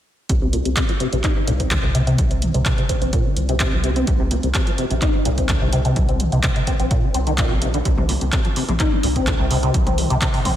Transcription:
0.29 C2 C3, kick, closed hi-hat
0.42 C3
0.53 A#2, closed hi-hat
0.65 C2 C3, closed hi-hat
0.76 C3, kick, clap, closed hi-hat
0.89 F3, closed hi-hat
1.00 C3, closed hi-hat
1.13 A#1 C3, closed hi-hat
1.24 D#4, kick, clap, closed hi-hat
1.36 C3
1.47 C2 A#2, closed hi-hat
1.60 C4, kick, closed hi-hat
1.71 C3, kick, clap, closed hi-hat
1.83 C2 C3
1.95 C3, closed hi-hat
2.07 C3, closed hi-hat
2.18 C2 G3, kick, closed hi-hat
2.31 C4, closed hi-hat
2.42 D#3, closed hi-hat
2.54 C2 C3, closed hi-hat
2.65 C3, kick, clap, closed hi-hat
2.78 C3, closed hi-hat
2.89 C4, kick, closed hi-hat
3.02 A#1 C4, closed hi-hat
3.13 A#2, kick, closed hi-hat
3.25 D3
3.36 C2 D#3, closed hi-hat
3.49 C3, closed hi-hat
3.60 C3, kick, clap, closed hi-hat
3.72 C2 G3
3.84 C3, closed hi-hat
3.96 C4, closed hi-hat
4.07 C2 C3, kick, closed hi-hat
4.20 C3
4.31 A#2, closed hi-hat
4.43 C2 C3, closed hi-hat
4.54 C3, kick, clap, closed hi-hat
4.67 F3, closed hi-hat
4.78 C3, closed hi-hat
4.91 A#1 C3, closed hi-hat
5.02 D#4, kick, clap, closed hi-hat
5.14 C3
5.25 C2 A#2, closed hi-hat
5.38 C4, kick, closed hi-hat
5.49 C3, kick, clap, closed hi-hat
5.61 C2 C3
5.73 C3, closed hi-hat
5.85 C3, closed hi-hat
5.96 C2 G3, kick, closed hi-hat
6.09 C4, closed hi-hat
6.20 D#3, closed hi-hat
6.32 C2 C3, closed hi-hat
6.43 C3, kick, clap, closed hi-hat
6.56 C3, closed hi-hat
6.67 C4, kick, closed hi-hat
6.80 A#1 C4, closed hi-hat
6.91 A#2, kick, closed hi-hat
7.03 D3
7.14 C2 C4, closed hi-hat
7.27 D#3, closed hi-hat
7.38 A#2, kick, clap, closed hi-hat
7.50 A#1 C3
7.62 C3, closed hi-hat
7.74 D3, closed hi-hat
7.85 C2 C3, kick, closed hi-hat
7.98 C3, mid tom
8.09 A#2, open hi-hat
8.21 C2 C3, closed hi-hat
8.32 C3, kick, clap, closed hi-hat
8.45 F3, closed hi-hat
8.56 C3, open hi-hat
8.69 A#1 C3, closed hi-hat, mid tom
8.80 D#4, kick, clap, closed hi-hat
8.92 C3
9.03 C2 A#2, open hi-hat
9.16 C4, kick, closed hi-hat
9.27 C3, kick, clap, closed hi-hat
9.39 C2 C3
9.51 C3, open hi-hat
9.63 C3, closed hi-hat
9.74 C2 G3, kick, closed hi-hat
9.87 C4, closed hi-hat, mid tom
9.98 D#3, open hi-hat
10.10 C2 C3, closed hi-hat
10.21 C3, kick, clap, closed hi-hat
10.34 C3, open hi-hat
10.45 C4, kick, open hi-hat, mid tom

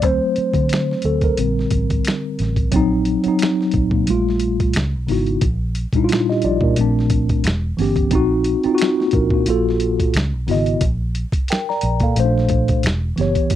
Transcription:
0.02 D2 F#3 A3 C4 C5, kick, closed hi-hat
0.36 muted fingered electric bass stroke, closed hi-hat
0.54 D3, kick, closed hi-hat
0.69 finger snap, closed hi-hat
0.74 snare
0.91 snare
1.02 D2 A4, closed hi-hat
1.21 A#4, kick, closed hi-hat
1.37 A#1 D3 G3 C4, closed hi-hat
1.59 snare
1.71 A1, kick, closed hi-hat
1.90 kick, closed hi-hat
2.05 finger snap, snare, closed hi-hat
2.39 A1, snare, closed hi-hat
2.56 kick, closed hi-hat
2.72 A#1 F#3 C4, kick, closed hi-hat
2.76 D#4
3.05 closed hi-hat
3.24 F#3 C4, muted fingered electric bass stroke, closed hi-hat
3.28 D#4
3.39 finger snap, closed hi-hat
3.43 snare
3.61 snare
3.71 A#1, kick, closed hi-hat
3.91 A#2, kick
4.06 A#1 A#2 G3 A3, closed hi-hat
4.10 F4
4.29 snare
4.40 closed hi-hat
4.60 kick, closed hi-hat
4.73 C#2, finger snap, snare, closed hi-hat
4.95 B1
5.07 G#1 C#3 B3 D#4 E4, open hi-hat
5.11 F#4, snare
5.27 closed hi-hat
5.41 A#1, kick, closed hi-hat
5.75 closed hi-hat
5.93 A#2 G3 D4, muted fingered electric bass stroke, kick, closed hi-hat
5.97 D#4 E4
6.04 F4
6.09 finger snap, closed hi-hat
6.13 snare
6.29 G4 D#5, snare
6.42 A#1 F4 D5, closed hi-hat
6.61 A#2 D4 A#4, kick
6.76 A#1 A#2 A3 C4, closed hi-hat
6.81 D4
6.99 snare
7.10 kick, closed hi-hat
7.29 kick, closed hi-hat
7.44 E1, finger snap, snare, closed hi-hat
7.77 G1 E3 B3 C#4, open hi-hat
7.82 G4, snare
7.96 kick, closed hi-hat
8.11 A#1 C4 D#4, kick, closed hi-hat
8.15 F#4
8.44 closed hi-hat
8.64 C4 D#4, muted fingered electric bass stroke, closed hi-hat
8.69 F4
8.75 F#4, closed hi-hat
8.82 finger snap, snare
9.00 A#3 F#4, snare
9.11 A#1 D4 A#4, kick, closed hi-hat
9.30 A#2 F#4, kick
9.35 A#3
9.46 A#1 A#2 A#3 F4, closed hi-hat
9.50 A4
9.69 snare
9.80 closed hi-hat
10.00 kick, closed hi-hat
10.14 C#2, finger snap, snare, closed hi-hat
10.33 B1
10.47 G#1 C#3 B3 E4 F#4, snare, open hi-hat
10.51 D#5
10.66 closed hi-hat
10.81 A#1, kick, closed hi-hat
11.15 closed hi-hat
11.32 muted fingered electric bass stroke, kick, closed hi-hat
11.48 A#4 G5, finger snap, closed hi-hat
11.53 snare
11.69 D5 A#5, snare
11.81 A#1, closed hi-hat
12.00 A#2 F5, kick, closed hi-hat
12.04 A4
12.16 A#1 A#2 A3 C#4, closed hi-hat
12.20 C5
12.25 D4
12.38 snare
12.49 kick, closed hi-hat
12.68 kick, closed hi-hat
12.83 E1, finger snap, snare, closed hi-hat
13.16 F#1 E3 B3 G4, closed hi-hat
13.21 C#5, snare
13.35 kick, closed hi-hat
13.50 G1 A3 A#3, kick, closed hi-hat

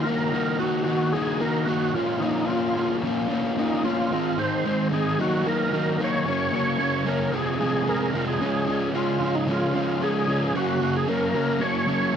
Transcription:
0.04 D#3 A#3 D#4 F#4 A#4
0.32 D#3 A#3 D#4 F#4
0.59 D#3 A#3 D#4 F#4
0.84 D#3 A#3 D#4 F#4
1.13 D#3 A#3 D#4 F#4 G#4
1.40 D#3 A#3 D#4 F#4 A#4
1.65 D#3 A#3 D#4 F#4
1.93 A#2 F3 A#3 C#4 F4
2.20 A#2 F3 A#3 C#4 D#4 F4
2.46 A#2 F3 A#3 C#4 F4
2.50 F4
2.75 A#2 F3 A#3 C#4 F4
3.02 A#2 F3 A#3 C#4 F4
3.29 A#2 F3 A#3 C#4 F4
3.56 A#2 F3 A#3 C#4 D#4 F4
3.83 A#2 F3 A#3 C#4 F4
4.10 G#2 D#3 G#3 C4 D#4
4.37 G#2 D#3 G#3 C4 D#4 C5
4.64 G#2 D#3 G#3 C4 D#4
4.91 G#2 D#3 G#3 C4 D#4 G#4
5.18 D#3 F#3 A#3 D#4 F#4
5.45 D#3 F#3 A#3 D#4 A#4
5.71 D#3 F#3 A#3 D#4
5.99 D#3 F#3 A#3 D#4
6.04 C#5
6.25 F#2 C#3 F#3 A#3 C#4
6.52 F#2 C#3 F#3 A#3 C#4
6.56 C#5
6.79 F#2 C#3 F#3 A#3 C#4
7.05 F#2 C#3 F#3 A#3 C#4 A#4
7.31 F2 C3 F3 G#3 C4 G#4
7.59 F2 C3 F3 G#3 C4
7.86 F2 C3 F3 G#3 C4 A#4
8.13 F2 C3 F3 G#3 C4
8.28 G#4
8.40 C#3 F3 G#3 C#4
8.67 C#3 F3 G#3 C#4
8.93 C#3 F3 G#3 C#4 F4
9.20 C#3 F3 G#3 C#4
9.35 D#4
9.47 C#3 F3 G#3 C#4
9.51 F4
9.73 C#3 F3 G#3 C#4
10.00 C#3 F3 G#3 C#4 G#4
10.27 C#3 F3 G#3 C#4
10.44 G#4
10.53 F#2 C#3 F#3 A#3 C#4 F#4
10.80 F#2 C#3 F#3 A#3 C#4
10.97 G#4
11.06 F#2 C#3 F#3 A#3 C#4 A#4
11.33 F#2 C#3 F#3 A#3 C#4
11.59 F#2 C#3 F#3 A#3 C#4 C#5
11.86 F#2 C#3 F#3 A#3 C#4
12.13 F#2

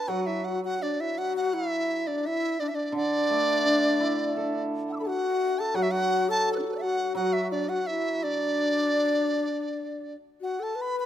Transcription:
Already playing: B4
0.08 F#3 F#4 F#5
0.26 E4 E5
0.44 F#4 F#5
0.64 F#4 F#5
0.82 D4 D5
1.00 E4 E5
1.18 F#4 F#5
1.37 F#5
1.54 E4 E5
2.07 D4 D5
2.25 E4 E5
2.60 D4 D5
2.68 E5
2.73 D4 D5
2.92 D3 D4
2.96 D5
3.30 A3
3.66 D4
4.00 E4
4.37 A4
4.89 F#5 E6
4.96 B5 D6
5.00 A4
5.04 F#4 F#5 A5
5.59 A4 A5
5.74 F#3 F#4 F#5
5.83 E5
5.91 F#4 F#5
6.29 A4 A5
6.53 A4 B4
6.59 D4
6.63 E4 F#4
6.69 A4 B4
6.74 D5 E5
6.80 F#5
6.84 F#4
7.15 F#3 F#5
7.19 F#4
7.33 E5
7.51 D4 D5
7.69 F#4 F#5
7.87 E4 E5
8.23 D4 D5
10.41 F#4 F#5
10.60 A4 A5
10.75 B4
10.81 B5
11.00 B5

